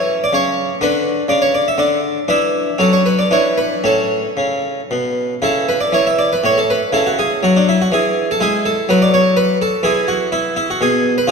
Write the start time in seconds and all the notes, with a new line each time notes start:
Already playing: E3 C#4 C#5
0.24 D5
0.33 C#3 C#5
0.81 D3 D4 B4
1.28 C#3 D5
1.42 C#5
1.55 D5
1.68 E5
1.78 D3 D5
2.28 E3 D4 E5
2.78 F#3 C#4 A4
2.93 C#5
3.06 B4
3.19 D5
3.31 E3 D4 C#5
3.58 B4
3.84 A2 C#4 A4
4.37 C#3
4.91 B2
5.42 C#3 E4 A4
5.69 B4
5.81 D5
5.92 E3 C#5
6.07 E5
6.19 D5
6.33 B4
6.44 A2 C#5
6.58 A4
6.70 B4
6.93 C#3 E4 A4
7.07 F#4
7.19 G#4
7.43 F#3 F#4
7.56 D4
7.69 E4
7.82 F#4
7.92 E3 G#4
8.31 A4
8.40 G#3 E4 G#4
8.65 A4
8.89 F#3 B4
9.02 D5
9.14 C#5
9.37 B4
9.62 A4
9.83 E3 E4 G#4
10.08 F#4
10.32 E4
10.56 E4
10.70 F#4
10.81 B2 G#4
11.18 B4
11.27 C#3 F4